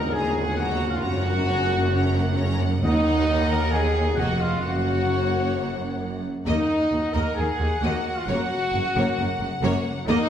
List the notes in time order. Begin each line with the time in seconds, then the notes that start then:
Already playing: D#2 A#3 A#4 F#5 A#5
0.12 F#3 G#4 D#5 G#5 A#5
0.34 A#3 A#4
0.39 F#5
0.57 F#3 F#4 D#5 F#5 A#5
0.81 A#3 A#4 F#5
0.90 F4 F5
1.02 F#1 F#2 C#4 F#4 C#5 F#5 A#5
1.25 A#3 A#4 F#5
1.49 C#4 C#5 A#5
1.71 A#3 A#4 F#5
1.93 C#4 C#5 A#5
2.16 A#3 A#4 F#5
2.38 C#4 C#5 A#5
2.60 A#3 A#4 F#5
2.80 D#2 D#3 A#3 D#4 D#5 F#5
2.84 D#2
3.49 A#4 A#5
3.71 G#4 G#5
4.15 F1 F2 A#3 F#4 D#5 F#5
4.39 F4 F5
4.60 F#1 F#2 A#3 F#4 C#5 F#5
6.45 D#2 A#3 D#4 D#5 F#5
6.91 D#2 A#3 F#4
7.12 D#2 A#3 A#4 D#5 A#5
7.35 D#2 A#3 G#4 A#4 G#5
7.58 D#2 A#3 F#4
7.80 D#2 A#3 F#4 D#5 F#5
8.15 F4 F5
8.25 F#1 F#2 F#4 C#5 F#5
8.30 A#3
8.72 F#1 F#2 A#3 F#4
8.95 F#1 F#2 A#3 C#5
9.18 F#1 F#2 A#3 A#4
9.40 F#1 F#2 A#3 F#4
9.62 F#1 F#2 A#3 C#5
10.05 D#2 D#3 A#3 D#4 D#5 F#5
10.15 D#3
10.22 D#3